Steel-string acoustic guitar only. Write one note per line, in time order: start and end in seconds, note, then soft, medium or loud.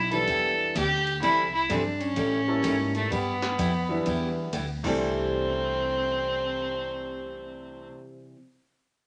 0.28 0.50 G3 medium
0.28 0.51 B3 medium
0.28 0.51 E4 medium
0.28 0.51 G4 medium
0.75 0.87 G3 medium
0.75 0.87 B3 medium
0.75 0.87 E4 medium
0.75 0.88 G4 medium
1.22 1.44 C3 medium
1.22 1.45 E3 medium
1.22 1.45 G3 medium
1.22 1.45 C4 medium
1.22 1.45 E4 medium
1.22 1.45 A4 medium
1.69 1.81 C3 medium
1.69 1.81 E3 medium
1.69 1.81 G3 medium
1.69 1.82 C4 medium
1.69 1.82 E4 medium
1.69 1.82 A4 medium
2.16 2.39 E3 soft
2.16 2.39 G3 medium
2.16 2.39 C#4 medium
2.16 2.39 E4 medium
2.16 2.39 A4 medium
2.63 2.75 E3 medium
2.63 2.75 G3 medium
2.63 2.75 C#4 medium
2.63 2.75 E4 medium
2.63 2.76 A4 medium
3.11 3.33 G3 medium
3.11 3.34 B3 medium
3.11 3.34 E4 medium
3.11 3.34 G4 medium
3.58 3.70 G3 medium
3.58 3.70 B3 medium
3.58 3.71 E4 medium
3.58 3.71 G4 medium
4.07 4.28 G3 medium
4.07 4.29 B3 medium
4.07 4.29 E4 medium
4.07 4.29 G4 medium
4.53 4.65 G3 medium
4.53 4.65 B3 medium
4.53 4.65 E4 medium
4.53 4.65 G4 medium
4.84 8.34 C3 medium
4.84 8.35 E3 medium
4.84 8.36 G3 medium
4.84 8.36 C4 medium
4.84 8.37 E4 medium
4.84 8.38 A4 medium